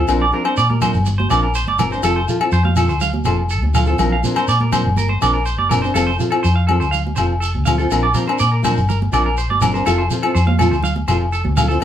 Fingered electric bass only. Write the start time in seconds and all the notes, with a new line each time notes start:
0.08 A#1
0.58 A#2
0.94 G1
1.31 A#1
1.67 G1
2.03 F1
2.52 F2
2.89 D2
3.26 F1
3.62 D2
3.99 A#1
4.48 A#2
4.85 G1
5.22 A#1
5.59 F#1
5.95 F1
6.44 F2
6.81 D2
7.18 F1
7.55 D2
7.91 A#1
8.40 A#2
8.77 G1
9.13 A#1
9.50 G1
9.87 F1
10.35 F2
10.71 D2
11.08 F1
11.45 D2